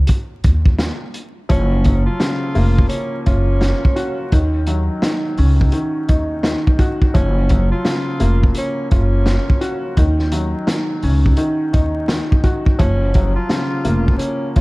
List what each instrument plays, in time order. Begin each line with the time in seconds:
0.07 kick, closed hi-hat
0.44 upright bass D#2, kick, closed hi-hat
0.66 kick
0.79 snare, closed hi-hat
1.14 closed hi-hat
1.49 upright bass F#1, upright piano F3, tenor saxophone C#4, kick, closed hi-hat
1.84 upright piano F#3, kick, closed hi-hat
2.06 tenor saxophone F4
2.20 upright piano C#3, snare, closed hi-hat
2.55 upright bass F1, upright piano A#3, open hi-hat
2.79 kick
2.88 tenor saxophone C#4, closed hi-hat
3.26 upright bass F#1, tenor saxophone C#4, upright piano F4, kick, closed hi-hat
3.61 snare, closed hi-hat
3.85 kick
3.96 upright piano F#4, closed hi-hat
4.32 upright bass D#2, upright piano D#3, kick, closed hi-hat
4.67 upright piano F#3, closed hi-hat
5.02 upright piano D#3, snare, closed hi-hat
5.37 upright bass C#2, upright piano C#4, open hi-hat
5.61 kick
5.72 upright piano D#3, closed hi-hat
6.09 upright bass D#2, upright piano D#4, kick, closed hi-hat
6.43 upright piano D#3, snare, closed hi-hat
6.67 kick
6.79 upright piano F#4, kick, closed hi-hat
7.02 kick
7.14 upright bass F#1, upright piano F3, tenor saxophone C#4, kick, closed hi-hat
7.49 upright piano F#3, kick, closed hi-hat
7.72 tenor saxophone F4
7.85 upright piano C#3, snare, closed hi-hat
8.20 upright bass F1, upright piano A#3, closed hi-hat
8.43 kick
8.55 tenor saxophone C#4, closed hi-hat
8.91 upright bass F#1, tenor saxophone C#4, upright piano F4, kick, closed hi-hat
9.26 snare, closed hi-hat
9.50 kick
9.61 upright piano F#4, closed hi-hat
9.97 upright bass D#2, upright piano D#3, kick, closed hi-hat
10.19 snare
10.32 upright piano F#3, closed hi-hat
10.67 upright piano D#3, snare, closed hi-hat
11.02 upright bass C#2, upright piano C#4, open hi-hat
11.26 kick
11.37 upright piano D#3, closed hi-hat
11.73 upright bass D#2, upright piano D#4, kick, closed hi-hat
12.08 upright piano D#3, snare, closed hi-hat
12.32 kick
12.44 upright piano F#4, kick, closed hi-hat
12.66 kick
12.79 upright bass F#1, upright piano F3, tenor saxophone C#4, kick, closed hi-hat
13.14 upright piano F#3, kick, closed hi-hat
13.35 tenor saxophone F4
13.49 upright piano C#3, snare, closed hi-hat
13.85 upright bass F1, upright piano A#3, closed hi-hat
14.08 kick
14.18 tenor saxophone C#4, closed hi-hat
14.56 upright bass F#1, tenor saxophone C#4, upright piano F4, kick, closed hi-hat